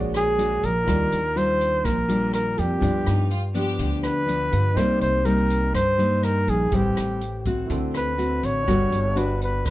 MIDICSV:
0, 0, Header, 1, 7, 480
1, 0, Start_track
1, 0, Key_signature, -3, "major"
1, 0, Tempo, 487409
1, 857, Time_signature, 4, 2, 24, 8
1, 9554, End_track
2, 0, Start_track
2, 0, Title_t, "Flugelhorn"
2, 0, Program_c, 0, 56
2, 164, Note_on_c, 0, 68, 97
2, 642, Note_on_c, 0, 70, 103
2, 656, Note_off_c, 0, 68, 0
2, 1353, Note_on_c, 0, 72, 99
2, 1368, Note_off_c, 0, 70, 0
2, 1820, Note_on_c, 0, 70, 91
2, 1835, Note_off_c, 0, 72, 0
2, 2297, Note_off_c, 0, 70, 0
2, 2304, Note_on_c, 0, 70, 90
2, 2550, Note_on_c, 0, 67, 83
2, 2565, Note_off_c, 0, 70, 0
2, 3501, Note_off_c, 0, 67, 0
2, 3983, Note_on_c, 0, 71, 101
2, 4698, Note_on_c, 0, 72, 99
2, 4712, Note_off_c, 0, 71, 0
2, 4936, Note_off_c, 0, 72, 0
2, 4944, Note_on_c, 0, 72, 103
2, 5173, Note_on_c, 0, 70, 96
2, 5188, Note_off_c, 0, 72, 0
2, 5654, Note_off_c, 0, 70, 0
2, 5663, Note_on_c, 0, 72, 97
2, 6148, Note_on_c, 0, 70, 92
2, 6162, Note_off_c, 0, 72, 0
2, 6396, Note_on_c, 0, 68, 88
2, 6411, Note_off_c, 0, 70, 0
2, 6640, Note_on_c, 0, 67, 79
2, 6655, Note_off_c, 0, 68, 0
2, 7348, Note_off_c, 0, 67, 0
2, 7851, Note_on_c, 0, 71, 82
2, 8323, Note_on_c, 0, 73, 87
2, 8338, Note_off_c, 0, 71, 0
2, 9042, Note_on_c, 0, 71, 78
2, 9056, Note_off_c, 0, 73, 0
2, 9271, Note_off_c, 0, 71, 0
2, 9295, Note_on_c, 0, 71, 80
2, 9502, Note_off_c, 0, 71, 0
2, 9554, End_track
3, 0, Start_track
3, 0, Title_t, "Grand piano"
3, 0, Program_c, 1, 0
3, 0, Note_on_c, 1, 66, 56
3, 0, Note_on_c, 1, 68, 53
3, 0, Note_on_c, 1, 73, 53
3, 0, Note_on_c, 1, 74, 68
3, 63, Control_c, 1, 64, 127
3, 825, Note_off_c, 1, 66, 0
3, 830, Note_on_c, 1, 65, 45
3, 837, Note_off_c, 1, 68, 0
3, 846, Note_off_c, 1, 73, 0
3, 848, Note_on_c, 1, 67, 42
3, 855, Note_off_c, 1, 74, 0
3, 869, Note_on_c, 1, 70, 44
3, 871, Control_c, 1, 64, 0
3, 886, Note_on_c, 1, 74, 52
3, 1013, Control_c, 1, 64, 127
3, 2487, Note_off_c, 1, 65, 0
3, 2496, Note_off_c, 1, 67, 0
3, 2507, Note_off_c, 1, 70, 0
3, 2516, Note_off_c, 1, 74, 0
3, 2525, Note_on_c, 1, 65, 35
3, 2533, Note_on_c, 1, 67, 34
3, 2546, Note_on_c, 1, 70, 33
3, 2555, Note_on_c, 1, 74, 38
3, 2725, Note_off_c, 1, 65, 0
3, 2740, Note_on_c, 1, 65, 45
3, 2746, Note_off_c, 1, 67, 0
3, 2760, Note_on_c, 1, 67, 45
3, 2780, Note_off_c, 1, 70, 0
3, 2780, Note_on_c, 1, 71, 43
3, 2784, Note_off_c, 1, 74, 0
3, 2787, Control_c, 1, 64, 0
3, 2800, Note_on_c, 1, 74, 53
3, 2939, Control_c, 1, 64, 127
3, 4402, Note_off_c, 1, 65, 0
3, 4413, Note_off_c, 1, 67, 0
3, 4423, Note_off_c, 1, 71, 0
3, 4433, Note_off_c, 1, 74, 0
3, 4439, Note_on_c, 1, 65, 36
3, 4446, Note_on_c, 1, 67, 32
3, 4457, Note_on_c, 1, 71, 34
3, 4465, Note_on_c, 1, 77, 39
3, 4659, Note_on_c, 1, 63, 46
3, 4662, Note_off_c, 1, 67, 0
3, 4677, Note_on_c, 1, 67, 44
3, 4686, Note_off_c, 1, 65, 0
3, 4695, Note_off_c, 1, 71, 0
3, 4699, Note_off_c, 1, 77, 0
3, 4699, Note_on_c, 1, 70, 42
3, 4706, Control_c, 1, 64, 0
3, 4715, Note_on_c, 1, 74, 52
3, 4860, Control_c, 1, 64, 127
3, 6558, Note_off_c, 1, 63, 0
3, 6568, Note_off_c, 1, 67, 0
3, 6579, Note_off_c, 1, 70, 0
3, 6581, Note_on_c, 1, 64, 45
3, 6588, Note_off_c, 1, 74, 0
3, 6602, Note_on_c, 1, 67, 43
3, 6624, Note_on_c, 1, 71, 45
3, 6628, Control_c, 1, 64, 0
3, 6642, Note_on_c, 1, 72, 51
3, 6794, Control_c, 1, 64, 127
3, 7529, Note_off_c, 1, 64, 0
3, 7544, Note_on_c, 1, 64, 57
3, 7550, Note_off_c, 1, 67, 0
3, 7561, Note_off_c, 1, 71, 0
3, 7562, Note_on_c, 1, 66, 48
3, 7571, Note_off_c, 1, 72, 0
3, 7580, Note_on_c, 1, 69, 50
3, 7588, Control_c, 1, 64, 0
3, 7602, Note_on_c, 1, 60, 63
3, 7762, Control_c, 1, 64, 127
3, 8501, Note_on_c, 1, 62, 49
3, 8502, Note_off_c, 1, 64, 0
3, 8509, Note_off_c, 1, 66, 0
3, 8521, Note_off_c, 1, 69, 0
3, 8524, Note_on_c, 1, 66, 46
3, 8532, Note_off_c, 1, 60, 0
3, 8545, Note_on_c, 1, 69, 43
3, 8552, Control_c, 1, 64, 0
3, 8561, Note_on_c, 1, 71, 52
3, 8726, Control_c, 1, 64, 127
3, 9554, Note_off_c, 1, 62, 0
3, 9554, Note_off_c, 1, 66, 0
3, 9554, Note_off_c, 1, 69, 0
3, 9554, Note_off_c, 1, 71, 0
3, 9554, End_track
4, 0, Start_track
4, 0, Title_t, "Violin section"
4, 0, Program_c, 2, 48
4, 3023, Note_on_c, 2, 63, 78
4, 3242, Note_off_c, 2, 63, 0
4, 3257, Note_on_c, 2, 65, 89
4, 3364, Note_off_c, 2, 65, 0
4, 3490, Note_on_c, 2, 67, 98
4, 3826, Note_off_c, 2, 67, 0
4, 9554, End_track
5, 0, Start_track
5, 0, Title_t, "Nylon-string guitar"
5, 0, Program_c, 3, 24
5, 0, Note_on_c, 3, 46, 57
5, 0, Note_on_c, 3, 56, 64
5, 0, Note_on_c, 3, 62, 62
5, 0, Note_on_c, 3, 66, 77
5, 338, Note_off_c, 3, 56, 0
5, 340, Note_off_c, 3, 62, 0
5, 341, Note_off_c, 3, 66, 0
5, 373, Note_on_c, 3, 56, 61
5, 378, Note_on_c, 3, 62, 56
5, 383, Note_on_c, 3, 66, 67
5, 684, Note_off_c, 3, 56, 0
5, 686, Note_off_c, 3, 62, 0
5, 689, Note_off_c, 3, 66, 0
5, 831, Note_off_c, 3, 46, 0
5, 847, Note_on_c, 3, 51, 55
5, 852, Note_on_c, 3, 55, 51
5, 859, Note_on_c, 3, 62, 57
5, 859, Note_on_c, 3, 65, 56
5, 1162, Note_off_c, 3, 55, 0
5, 1163, Note_off_c, 3, 62, 0
5, 1166, Note_off_c, 3, 65, 0
5, 1329, Note_on_c, 3, 55, 54
5, 1333, Note_on_c, 3, 62, 54
5, 1339, Note_on_c, 3, 65, 63
5, 1788, Note_off_c, 3, 51, 0
5, 1807, Note_on_c, 3, 46, 58
5, 2014, Note_off_c, 3, 55, 0
5, 2014, Note_off_c, 3, 62, 0
5, 2018, Note_off_c, 3, 65, 0
5, 2049, Note_on_c, 3, 55, 60
5, 2053, Note_on_c, 3, 62, 58
5, 2056, Note_on_c, 3, 65, 63
5, 2733, Note_off_c, 3, 55, 0
5, 2735, Note_off_c, 3, 62, 0
5, 2735, Note_off_c, 3, 65, 0
5, 2746, Note_off_c, 3, 46, 0
5, 2756, Note_on_c, 3, 43, 54
5, 2761, Note_on_c, 3, 53, 56
5, 2762, Note_on_c, 3, 59, 50
5, 2768, Note_on_c, 3, 62, 60
5, 3243, Note_off_c, 3, 53, 0
5, 3245, Note_off_c, 3, 59, 0
5, 3248, Note_off_c, 3, 62, 0
5, 3489, Note_on_c, 3, 53, 58
5, 3492, Note_on_c, 3, 59, 65
5, 3496, Note_on_c, 3, 62, 74
5, 3701, Note_off_c, 3, 43, 0
5, 3728, Note_on_c, 3, 50, 57
5, 4173, Note_off_c, 3, 53, 0
5, 4174, Note_off_c, 3, 59, 0
5, 4176, Note_off_c, 3, 62, 0
5, 4201, Note_on_c, 3, 53, 52
5, 4206, Note_on_c, 3, 59, 54
5, 4211, Note_on_c, 3, 62, 65
5, 4649, Note_off_c, 3, 53, 0
5, 4651, Note_off_c, 3, 59, 0
5, 4654, Note_off_c, 3, 62, 0
5, 4667, Note_off_c, 3, 50, 0
5, 4684, Note_on_c, 3, 48, 57
5, 4688, Note_on_c, 3, 55, 56
5, 4690, Note_on_c, 3, 58, 56
5, 4693, Note_on_c, 3, 63, 59
5, 5132, Note_off_c, 3, 58, 0
5, 5133, Note_off_c, 3, 55, 0
5, 5135, Note_off_c, 3, 63, 0
5, 5167, Note_on_c, 3, 55, 60
5, 5171, Note_on_c, 3, 58, 52
5, 5175, Note_on_c, 3, 63, 63
5, 5625, Note_off_c, 3, 48, 0
5, 5645, Note_on_c, 3, 43, 53
5, 5648, Note_off_c, 3, 55, 0
5, 5650, Note_off_c, 3, 58, 0
5, 5650, Note_off_c, 3, 63, 0
5, 5886, Note_on_c, 3, 55, 55
5, 5891, Note_on_c, 3, 58, 63
5, 5899, Note_on_c, 3, 63, 66
5, 6572, Note_off_c, 3, 55, 0
5, 6576, Note_off_c, 3, 58, 0
5, 6577, Note_off_c, 3, 63, 0
5, 6586, Note_off_c, 3, 43, 0
5, 6614, Note_on_c, 3, 45, 52
5, 6619, Note_on_c, 3, 55, 54
5, 6622, Note_on_c, 3, 60, 55
5, 6628, Note_on_c, 3, 64, 65
5, 7094, Note_off_c, 3, 55, 0
5, 7097, Note_off_c, 3, 60, 0
5, 7098, Note_off_c, 3, 64, 0
5, 7348, Note_on_c, 3, 57, 58
5, 7353, Note_on_c, 3, 60, 66
5, 7354, Note_on_c, 3, 66, 62
5, 7552, Note_off_c, 3, 45, 0
5, 7580, Note_on_c, 3, 50, 55
5, 8025, Note_off_c, 3, 57, 0
5, 8026, Note_off_c, 3, 60, 0
5, 8028, Note_off_c, 3, 66, 0
5, 8050, Note_on_c, 3, 57, 50
5, 8054, Note_on_c, 3, 60, 59
5, 8058, Note_on_c, 3, 66, 60
5, 8496, Note_off_c, 3, 57, 0
5, 8498, Note_off_c, 3, 60, 0
5, 8499, Note_off_c, 3, 66, 0
5, 8516, Note_off_c, 3, 50, 0
5, 8542, Note_on_c, 3, 59, 51
5, 8543, Note_on_c, 3, 55, 54
5, 8546, Note_on_c, 3, 62, 55
5, 8550, Note_on_c, 3, 66, 60
5, 8849, Note_off_c, 3, 59, 0
5, 8852, Note_off_c, 3, 62, 0
5, 8854, Note_off_c, 3, 66, 0
5, 9014, Note_on_c, 3, 59, 59
5, 9019, Note_on_c, 3, 62, 59
5, 9023, Note_on_c, 3, 66, 62
5, 9479, Note_off_c, 3, 55, 0
5, 9495, Note_off_c, 3, 59, 0
5, 9497, Note_off_c, 3, 62, 0
5, 9499, Note_off_c, 3, 66, 0
5, 9504, Note_on_c, 3, 50, 55
5, 9554, Note_off_c, 3, 50, 0
5, 9554, End_track
6, 0, Start_track
6, 0, Title_t, "Upright bass"
6, 0, Program_c, 4, 32
6, 0, Note_on_c, 4, 34, 92
6, 580, Note_off_c, 4, 34, 0
6, 621, Note_on_c, 4, 34, 95
6, 842, Note_off_c, 4, 34, 0
6, 866, Note_on_c, 4, 39, 91
6, 1085, Note_off_c, 4, 39, 0
6, 1104, Note_on_c, 4, 39, 79
6, 1780, Note_off_c, 4, 39, 0
6, 1825, Note_on_c, 4, 34, 80
6, 2500, Note_off_c, 4, 34, 0
6, 2545, Note_on_c, 4, 41, 92
6, 2763, Note_off_c, 4, 41, 0
6, 2777, Note_on_c, 4, 43, 90
6, 2999, Note_off_c, 4, 43, 0
6, 3024, Note_on_c, 4, 43, 76
6, 3699, Note_off_c, 4, 43, 0
6, 3738, Note_on_c, 4, 38, 92
6, 4416, Note_off_c, 4, 38, 0
6, 4458, Note_on_c, 4, 43, 91
6, 4679, Note_off_c, 4, 43, 0
6, 4698, Note_on_c, 4, 36, 82
6, 4919, Note_off_c, 4, 36, 0
6, 4942, Note_on_c, 4, 36, 82
6, 5619, Note_off_c, 4, 36, 0
6, 5661, Note_on_c, 4, 43, 85
6, 6339, Note_off_c, 4, 43, 0
6, 6377, Note_on_c, 4, 34, 89
6, 6599, Note_off_c, 4, 34, 0
6, 6621, Note_on_c, 4, 33, 86
6, 6841, Note_off_c, 4, 33, 0
6, 6862, Note_on_c, 4, 33, 79
6, 7540, Note_off_c, 4, 33, 0
6, 7586, Note_on_c, 4, 38, 86
6, 8263, Note_off_c, 4, 38, 0
6, 8304, Note_on_c, 4, 33, 86
6, 8525, Note_off_c, 4, 33, 0
6, 8546, Note_on_c, 4, 31, 82
6, 8766, Note_off_c, 4, 31, 0
6, 8784, Note_on_c, 4, 31, 80
6, 9464, Note_off_c, 4, 31, 0
6, 9510, Note_on_c, 4, 38, 88
6, 9554, Note_off_c, 4, 38, 0
6, 9554, End_track
7, 0, Start_track
7, 0, Title_t, "Drums"
7, 140, Note_on_c, 9, 37, 63
7, 140, Note_on_c, 9, 42, 44
7, 239, Note_off_c, 9, 37, 0
7, 239, Note_off_c, 9, 42, 0
7, 383, Note_on_c, 9, 42, 45
7, 481, Note_off_c, 9, 42, 0
7, 624, Note_on_c, 9, 42, 49
7, 722, Note_off_c, 9, 42, 0
7, 862, Note_on_c, 9, 37, 59
7, 862, Note_on_c, 9, 42, 60
7, 864, Note_on_c, 9, 36, 55
7, 961, Note_off_c, 9, 37, 0
7, 961, Note_off_c, 9, 42, 0
7, 962, Note_off_c, 9, 36, 0
7, 1103, Note_on_c, 9, 42, 48
7, 1202, Note_off_c, 9, 42, 0
7, 1345, Note_on_c, 9, 42, 45
7, 1444, Note_off_c, 9, 42, 0
7, 1583, Note_on_c, 9, 42, 43
7, 1682, Note_off_c, 9, 42, 0
7, 1821, Note_on_c, 9, 36, 57
7, 1822, Note_on_c, 9, 37, 59
7, 1822, Note_on_c, 9, 42, 53
7, 1919, Note_off_c, 9, 36, 0
7, 1920, Note_off_c, 9, 37, 0
7, 1920, Note_off_c, 9, 42, 0
7, 2061, Note_on_c, 9, 42, 45
7, 2160, Note_off_c, 9, 42, 0
7, 2297, Note_on_c, 9, 37, 59
7, 2297, Note_on_c, 9, 42, 44
7, 2396, Note_off_c, 9, 37, 0
7, 2396, Note_off_c, 9, 42, 0
7, 2537, Note_on_c, 9, 42, 44
7, 2636, Note_off_c, 9, 42, 0
7, 2777, Note_on_c, 9, 36, 55
7, 2778, Note_on_c, 9, 42, 55
7, 2875, Note_off_c, 9, 36, 0
7, 2876, Note_off_c, 9, 42, 0
7, 3018, Note_on_c, 9, 37, 62
7, 3018, Note_on_c, 9, 42, 44
7, 3117, Note_off_c, 9, 37, 0
7, 3117, Note_off_c, 9, 42, 0
7, 3255, Note_on_c, 9, 42, 43
7, 3353, Note_off_c, 9, 42, 0
7, 3492, Note_on_c, 9, 42, 40
7, 3591, Note_off_c, 9, 42, 0
7, 3734, Note_on_c, 9, 42, 55
7, 3735, Note_on_c, 9, 36, 54
7, 3832, Note_off_c, 9, 42, 0
7, 3833, Note_off_c, 9, 36, 0
7, 3973, Note_on_c, 9, 37, 57
7, 3973, Note_on_c, 9, 42, 45
7, 4072, Note_off_c, 9, 37, 0
7, 4072, Note_off_c, 9, 42, 0
7, 4219, Note_on_c, 9, 42, 45
7, 4317, Note_off_c, 9, 42, 0
7, 4455, Note_on_c, 9, 42, 45
7, 4554, Note_off_c, 9, 42, 0
7, 4695, Note_on_c, 9, 36, 56
7, 4695, Note_on_c, 9, 37, 62
7, 4695, Note_on_c, 9, 42, 56
7, 4793, Note_off_c, 9, 36, 0
7, 4793, Note_off_c, 9, 37, 0
7, 4793, Note_off_c, 9, 42, 0
7, 4935, Note_on_c, 9, 42, 46
7, 5033, Note_off_c, 9, 42, 0
7, 5171, Note_on_c, 9, 42, 49
7, 5270, Note_off_c, 9, 42, 0
7, 5417, Note_on_c, 9, 42, 47
7, 5516, Note_off_c, 9, 42, 0
7, 5658, Note_on_c, 9, 36, 56
7, 5658, Note_on_c, 9, 37, 57
7, 5658, Note_on_c, 9, 42, 60
7, 5757, Note_off_c, 9, 36, 0
7, 5757, Note_off_c, 9, 37, 0
7, 5757, Note_off_c, 9, 42, 0
7, 5902, Note_on_c, 9, 42, 45
7, 6001, Note_off_c, 9, 42, 0
7, 6136, Note_on_c, 9, 37, 60
7, 6136, Note_on_c, 9, 42, 48
7, 6235, Note_off_c, 9, 37, 0
7, 6235, Note_off_c, 9, 42, 0
7, 6379, Note_on_c, 9, 42, 44
7, 6477, Note_off_c, 9, 42, 0
7, 6615, Note_on_c, 9, 42, 54
7, 6620, Note_on_c, 9, 36, 61
7, 6713, Note_off_c, 9, 42, 0
7, 6718, Note_off_c, 9, 36, 0
7, 6862, Note_on_c, 9, 37, 61
7, 6862, Note_on_c, 9, 42, 43
7, 6961, Note_off_c, 9, 37, 0
7, 6961, Note_off_c, 9, 42, 0
7, 7102, Note_on_c, 9, 42, 41
7, 7201, Note_off_c, 9, 42, 0
7, 7342, Note_on_c, 9, 36, 55
7, 7342, Note_on_c, 9, 42, 42
7, 7441, Note_off_c, 9, 36, 0
7, 7441, Note_off_c, 9, 42, 0
7, 7583, Note_on_c, 9, 36, 60
7, 7584, Note_on_c, 9, 42, 53
7, 7681, Note_off_c, 9, 36, 0
7, 7683, Note_off_c, 9, 42, 0
7, 7822, Note_on_c, 9, 37, 61
7, 7822, Note_on_c, 9, 42, 41
7, 7920, Note_off_c, 9, 37, 0
7, 7920, Note_off_c, 9, 42, 0
7, 8064, Note_on_c, 9, 42, 40
7, 8162, Note_off_c, 9, 42, 0
7, 8301, Note_on_c, 9, 42, 43
7, 8400, Note_off_c, 9, 42, 0
7, 8545, Note_on_c, 9, 36, 60
7, 8548, Note_on_c, 9, 37, 59
7, 8548, Note_on_c, 9, 42, 55
7, 8644, Note_off_c, 9, 36, 0
7, 8646, Note_off_c, 9, 37, 0
7, 8646, Note_off_c, 9, 42, 0
7, 8785, Note_on_c, 9, 42, 46
7, 8884, Note_off_c, 9, 42, 0
7, 9028, Note_on_c, 9, 42, 45
7, 9126, Note_off_c, 9, 42, 0
7, 9270, Note_on_c, 9, 42, 46
7, 9369, Note_off_c, 9, 42, 0
7, 9506, Note_on_c, 9, 36, 56
7, 9508, Note_on_c, 9, 37, 56
7, 9508, Note_on_c, 9, 42, 59
7, 9554, Note_off_c, 9, 36, 0
7, 9554, Note_off_c, 9, 37, 0
7, 9554, Note_off_c, 9, 42, 0
7, 9554, End_track
0, 0, End_of_file